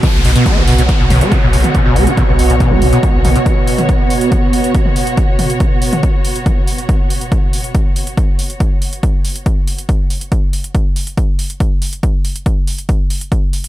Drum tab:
HH |x-oxx-oxx-oxx-ox|x-oxx-oxx-oxx-ox|x-oxx-oxx-oxx-ox|x-oxx-oxx-oxx-ox|
T2 |o----o----o----o|----o----o----o-|---o----o----o--|--o----o----o---|
BD |o---o---o---o---|o---o---o---o---|o---o---o---o---|o---o---o---o---|

HH |x-oxx-oxx-oxx-ox|x-oxx-oxx-oxx-ox|x-oxx-oxx-oxx-ox|x-oxx-oxx-oxx-ox|
T2 |----------------|----------------|----------------|----------------|
BD |o---o---o---o---|o---o---o---o---|o---o---o---o---|o---o---o---o---|